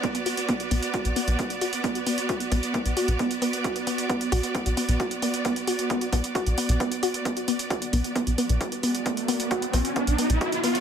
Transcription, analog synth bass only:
X:1
M:4/4
L:1/16
Q:1/4=133
K:Bm
V:1 name="Analog synth bass" clef=bass
z6 B,,, z2 B,,, z B,,, z4 | z6 B,,, z2 B,,, z B,,, z4 | z6 B,,, z2 B,,, z B,,, z4 | z6 B,,, z2 B,,, z B,,, z4 |
z6 B,,, z2 B,,, z B,,, z4 | z6 B,,, z2 B,,, z B,,, z4 |]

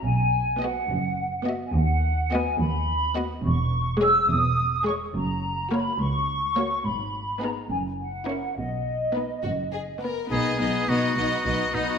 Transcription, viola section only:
X:1
M:6/8
L:1/8
Q:3/8=70
K:B
V:1 name="Viola section"
z2 B, z2 B, | z2 B, z2 B, | z2 G, z2 G, | z2 A, z2 A, |
z2 B, z2 C | z2 B, z2 B, | B, B, B, B, B, B, |]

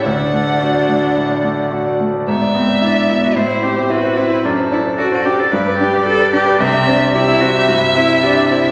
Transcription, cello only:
X:1
M:4/4
L:1/16
Q:1/4=111
K:Dmix
V:1 name="Cello"
D12- D2 z2 | B,2 C2 D D E F E2 G2 F2 E2 | D2 E2 F F G A B2 G2 A2 G2 | C2 D2 E E F G F2 E2 D2 E2 |]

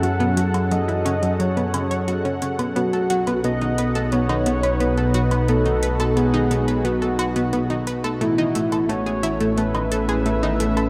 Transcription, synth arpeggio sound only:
X:1
M:4/4
L:1/16
Q:1/4=88
K:Bmix
V:1 name="Synth arpeggio sound"
F, B, F, F F, E C F, F, B, C c F C C B, | B, A F B, B, D B A B, D B, B B, A F B, | B, D B A B, D B, B B, A F B, B, D B A | A, D A, A A, G E A, A, D A G A, D A, A |]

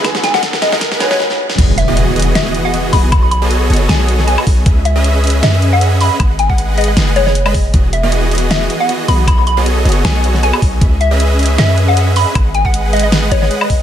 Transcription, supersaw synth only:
X:1
M:4/4
L:1/16
Q:"Swing 16ths" 1/4=156
K:E
V:1 name="Supersaw synth"
[G,GBdf] z2 [G,GBdf]3 [G,GBdf]3 [G,GBdf]3 z4 | [E,B,FGd] z2 [E,B,FGd]3 [E,B,FGd]3 [E,B,FGd]3 [E,B,FGd]2 [E,B,FGd]2 | [B,FGAcd] z2 [B,FGAcd]3 [B,FGAcd]3 [B,FGAcd]3 [B,FGAcd]2 [GA]2 | [CGBde] z2 [CGBde]3 [CGBde]3 [CGBde]3 [CGBde]2 [CGBde]2 |
[G,GB] z2 [G,GBdf]3 [G,GBdf]3 [G,GBdf] [G,GBdf] z2 [G,GBdb] z2 | [E,B,FGd] z2 [E,B,FGd]3 [E,B,FGd]3 [E,B,FGd]3 [E,B,FGd]2 [E,B,FGd]2 | [B,GAcd] z2 [B,FGAcd]3 [B,FGAcd]3 [B,FGAcd]3 [B,FGAcd]2 [B,FGd]2 | [CGBde] z2 [CGBde]3 [CGBde]3 [CGBde]3 [CGBde]2 [CGBde]2 |
B z2 [G,GBdf]3 [G,GBdf]3 [G,GBdf]3 [G,GBdf]2 [G,Gf]2 |]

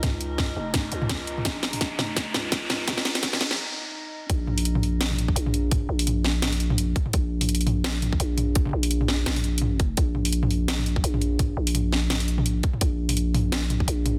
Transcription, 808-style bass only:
X:1
M:4/4
L:1/8
Q:"Swing 16ths" 1/4=169
K:Bbm
V:1 name="808-style bass" clef=bass
D,,3 F,,,2 D,,3 | B,,,3 F,,,2 D,,3 | D,,3 B,,, z4 | B,,,6 B,,,2- |
B,,, B,,,6 z | B,,,6 B,,,2- | B,,, B,,,3 B,,,4 | B,,,6 B,,,2- |
B,,, B,,,6 z | B,,,6 B,,,2 |]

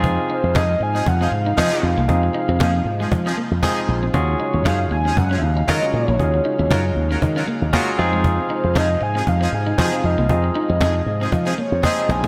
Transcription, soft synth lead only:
X:1
M:4/4
L:1/16
Q:"Swing 16ths" 1/4=117
K:Fphr
V:1 name="Soft synth lead"
z2 c2 e2 a2 g f3 e2 f2- | f12- f2 z2 | z2 d2 f2 a2 g3/2 _f/2 =f2 e2 d2- | d12- d2 z2 |
z2 c2 e2 a2 f2 a2 f2 e2- | e8- e2 d2 e2 a2 |]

